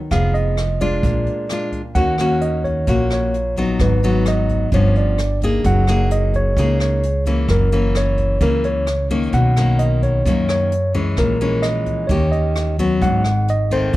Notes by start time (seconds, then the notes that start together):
0.11 F1 F3 B3 D#4 G#4 F5, kick, cross-stick, closed hi-hat
0.34 D#5, closed hi-hat
0.57 cross-stick, closed hi-hat
0.80 G#3 D4 F4 D5, kick, closed hi-hat
1.03 A#1 A#2, kick, closed hi-hat
1.26 closed hi-hat
1.49 G#3 D4 F4, cross-stick, closed hi-hat
1.72 kick, closed hi-hat
1.95 D#2 D#3 A#3 C#4 F#4 F#5, kick, closed hi-hat
2.18 A#3 C#4 F#4, cross-stick, closed hi-hat
2.41 D#5, closed hi-hat
2.64 C#5, kick, closed hi-hat
2.87 A#1 A#2 A#3 C#4 F#4, kick, closed hi-hat
3.10 C#5, cross-stick, closed hi-hat
3.34 closed hi-hat
3.56 F#3 B3 D#4, kick, closed hi-hat
3.79 G#1 G#2 B4, kick, cross-stick, closed hi-hat
4.03 F#3 B3 D#4, closed hi-hat
4.26 D#5, cross-stick, closed hi-hat
4.49 kick, closed hi-hat
4.71 G1 G2 F3 B3 C#4 C#5, kick, closed hi-hat
4.95 D5, closed hi-hat
5.18 cross-stick, closed hi-hat
5.41 A#3 D#4 G#4, kick, closed hi-hat
5.64 F#1 F#3 F#5, kick, closed hi-hat
5.87 A#3 D#4 G#4, cross-stick, closed hi-hat
6.11 D#5, closed hi-hat
6.34 C#5, kick, closed hi-hat
6.57 C#2 C#3 A#3 D#4 G#4, kick, closed hi-hat
6.80 C#5, cross-stick, closed hi-hat
7.03 closed hi-hat
7.26 E3 A#3 C#4, kick, closed hi-hat
7.48 F#1 F#2 A#4, kick, cross-stick, closed hi-hat
7.72 E3 A#3 C#4, closed hi-hat
7.95 C#5, cross-stick, closed hi-hat
8.18 kick, closed hi-hat
8.41 C#2 C#3 E3 A#3 C#4 A#4, kick, closed hi-hat
8.64 C#5, closed hi-hat
8.87 cross-stick, closed hi-hat
9.10 D#3 A#3 C#4, kick, closed hi-hat
9.33 B1 B2 F#5, kick, closed hi-hat
9.56 D#3 A#3 C#4, cross-stick, closed hi-hat
9.79 D#5, closed hi-hat
10.02 C#5, kick, closed hi-hat
10.25 F#2 D#3 A#3 C#4, kick, closed hi-hat
10.49 C#5, cross-stick, closed hi-hat
10.72 closed hi-hat
10.94 E3 G#3 C#4, kick, closed hi-hat
11.17 A#1 A#2 A#4, kick, cross-stick, closed hi-hat
11.41 E3 G#3 C#4, closed hi-hat
11.62 D#5, cross-stick, closed hi-hat
11.86 kick, closed hi-hat
12.07 D#2 D#3 A#3 C#4 G4 C#5, kick, closed hi-hat
12.32 D#5, closed hi-hat
12.56 cross-stick, closed hi-hat
12.79 F#3 B3 C#4, kick, closed hi-hat
13.02 G#1 G#2 F#5, kick, closed hi-hat
13.24 cross-stick, closed hi-hat
13.48 D#5, closed hi-hat
13.71 D#3 A3 C4 C5, kick, closed hi-hat
13.93 F2, closed hi-hat